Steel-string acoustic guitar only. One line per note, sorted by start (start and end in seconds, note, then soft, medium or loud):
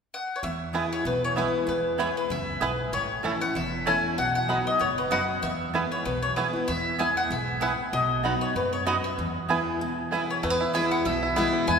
0.43 1.02 E2 medium
0.73 1.03 E3 medium
0.73 1.04 G#3 medium
0.73 1.04 B3 medium
0.73 1.04 E4 medium
1.05 1.65 B2 medium
1.36 1.66 E3 medium
1.36 1.66 G#3 medium
1.36 1.67 B3 medium
1.36 1.67 E4 medium
1.67 2.27 E2 medium
1.98 2.28 E3 medium
1.98 2.29 G#3 medium
1.98 2.29 B3 medium
1.98 2.29 E4 medium
2.30 2.60 F#2 medium
2.61 2.91 G#2 medium
2.93 3.52 A2 loud
3.23 3.40 E3 medium
3.23 3.40 A3 medium
3.23 3.41 C#4 medium
3.23 3.39 E4 medium
3.40 3.55 C#4 soft
3.40 3.54 E4 medium
3.55 4.15 E2 medium
3.86 4.16 E3 medium
3.86 4.17 A3 medium
3.86 4.17 C#4 medium
3.86 4.17 E4 medium
4.18 4.77 B2 medium
4.49 4.79 F#3 medium
4.49 4.79 B3 medium
4.49 4.79 D#4 medium
4.49 4.79 F#4 medium
4.79 5.10 G#2 medium
5.11 5.41 F#2 medium
5.42 6.02 E2 medium
5.74 6.04 E3 medium
5.74 6.04 G#3 medium
5.74 6.05 B3 medium
5.74 6.05 E4 medium
6.06 6.65 B2 medium
6.36 6.53 E3 medium
6.36 6.53 G#3 medium
6.36 6.54 B3 medium
6.36 6.52 E4 medium
6.53 6.68 B3 soft
6.53 6.67 E4 medium
6.68 7.28 E2 medium
6.99 7.29 E3 medium
6.99 7.29 G#3 medium
6.99 7.29 B3 medium
6.99 7.30 E4 medium
7.30 7.60 G#2 medium
7.61 7.91 A2 medium
7.93 8.53 B2 medium
8.24 8.54 F#3 medium
8.24 8.54 B3 medium
8.24 8.55 D#4 medium
8.24 8.55 F#4 medium
8.56 8.86 G#2 medium
8.87 9.17 F#2 medium
9.19 9.78 E2 medium
9.49 9.79 E3 medium
9.49 9.79 G#3 medium
9.49 9.80 B3 medium
9.49 9.80 E4 medium
9.81 10.41 B2 medium
10.13 10.42 E3 medium
10.13 10.42 G#3 medium
10.13 10.43 B3 medium
10.13 10.43 E4 medium
10.43 11.03 E2 medium
10.74 11.04 E3 medium
10.74 11.04 G#3 medium
10.74 11.05 B3 loud
10.74 11.05 E4 medium
11.06 11.65 B2 medium
11.36 11.66 E3 medium
11.36 11.67 G#3 loud
11.36 11.67 B3 loud
11.36 11.67 E4 loud
11.67 11.79 E2 medium